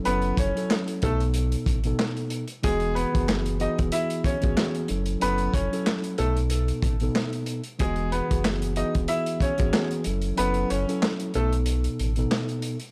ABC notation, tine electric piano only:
X:1
M:4/4
L:1/16
Q:"Swing 16ths" 1/4=93
K:E
V:1 name="Tine electric piano"
[F,CEA]3 [F,CEA]3 [B,,B,DA]4- [B,,B,DA] [B,,B,DA]4 z | [E,B,FG]3 [E,B,FG]3 [E,B,FG]4- [E,B,FG] [E,B,FG] [E,B,FG]2 [F,CEA]2 | [F,CEA]3 [F,CEA]3 [B,,B,DA]4- [B,,B,DA] [B,,B,DA]4 z | [E,B,FG]3 [E,B,FG]3 [E,B,FG]4- [E,B,FG] [E,B,FG] [E,B,FG]2 [F,CEA]2 |
[F,CEA]3 [F,CEA]3 [B,,B,DA]4- [B,,B,DA] [B,,B,DA]4 z |]